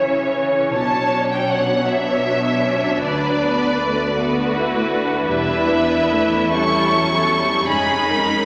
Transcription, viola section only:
0.00 0.34 E3 soft
0.00 0.74 C#4 soft
0.35 0.73 E3 soft
0.72 3.03 F#3 soft
0.72 1.88 D4 soft
1.88 2.25 B3 soft
2.26 2.65 B3 soft
2.65 3.05 C#4 soft
3.04 3.42 F#3 soft
3.04 4.14 D4 soft
3.42 3.80 B3 soft
3.80 5.28 A3 soft
4.18 4.54 B3 soft
4.55 4.91 E4 soft
4.92 6.54 D4 soft
5.29 5.68 G3 soft
5.70 6.12 B3 soft
6.12 6.54 A3 soft
6.54 6.93 G3 soft
6.54 7.66 C#4 soft
6.94 7.30 F#3 soft
7.31 7.68 G3 soft
7.69 8.45 G#3 soft
7.69 8.45 C#4 soft

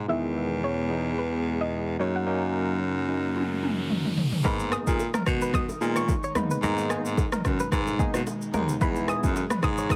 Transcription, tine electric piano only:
0.08 0.59 D#3 loud
0.08 0.59 E3 medium
0.08 0.59 G#3 medium
0.08 0.59 B3 medium
0.90 1.11 E3 medium
0.90 1.11 G#3 medium
0.90 1.11 B3 medium
0.90 1.11 D#4 medium
1.99 2.24 F#3 medium
1.99 2.25 A#3 medium
1.99 2.25 C#4 medium
1.99 2.25 D#4 loud
2.26 2.77 F#3 medium
2.26 2.77 A#3 medium
2.26 2.77 C#4 medium
2.26 2.77 D#4 loud
3.08 3.29 F#3 medium
3.08 3.29 A#3 medium
3.08 3.30 C#4 medium
3.08 3.30 D#4 medium
4.44 4.95 G#3 medium
4.44 4.95 A#3 medium
4.44 4.95 B3 medium
4.44 4.95 D#4 loud
5.81 6.02 G#3 medium
5.81 6.02 A#3 medium
5.81 6.02 B3 medium
5.81 6.02 D#4 medium
6.36 6.57 G#3 medium
6.36 6.57 A#3 medium
6.36 6.57 B3 medium
6.36 6.57 D#4 medium
6.63 7.13 G#3 loud
6.63 7.14 A#3 medium
6.63 7.14 B3 medium
6.63 7.14 D#4 loud
7.99 8.20 G#3 medium
7.99 8.20 A#3 medium
7.99 8.20 B3 medium
7.99 8.21 D#4 medium
8.54 8.75 G#3 medium
8.54 8.75 A#3 medium
8.54 8.75 B3 medium
8.54 8.75 D#4 medium
8.81 9.32 G#3 loud
8.81 9.32 B3 medium
8.81 9.32 D#4 medium
8.81 9.32 E4 loud

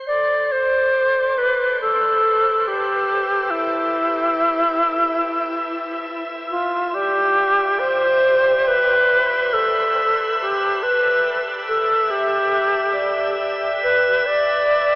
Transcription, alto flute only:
0.07 0.53 D5 medium
0.52 1.40 C5 loud
1.38 1.80 B4 medium
1.81 2.69 A4 medium
2.68 3.52 G4 medium
3.50 6.24 E4 medium
6.51 6.96 F4 medium
6.94 7.81 G4 loud
7.79 8.69 C5 medium
8.68 9.55 B4 loud
9.53 10.38 A4 medium
10.41 10.84 G4 medium
10.83 11.40 B4 medium
11.68 12.12 A4 medium
12.11 13.38 G4 medium
13.83 14.28 B4 medium
14.26 14.95 D5 loud

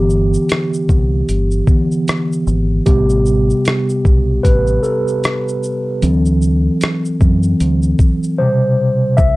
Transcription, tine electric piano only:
0.00 0.85 D3 medium
0.00 0.85 E3 soft
0.00 0.86 B3 medium
0.00 2.03 G4 medium
1.68 2.04 D3 soft
1.68 2.04 E3 soft
1.68 2.04 B3 medium
2.86 4.01 C3 medium
2.86 4.01 G3 soft
2.86 4.02 B3 medium
2.86 4.49 G4 medium
4.43 4.81 B4 loud
4.83 8.35 A4 medium
6.02 7.17 E3 medium
6.02 7.17 F#3 soft
6.02 7.17 C4 medium
7.21 7.56 E3 soft
7.21 7.57 F#3 soft
7.21 7.57 C4 medium
8.38 9.15 B2 medium
8.38 9.14 C3 medium
8.38 9.15 G3 soft
8.38 9.20 C5 medium
9.17 9.36 E5 loud

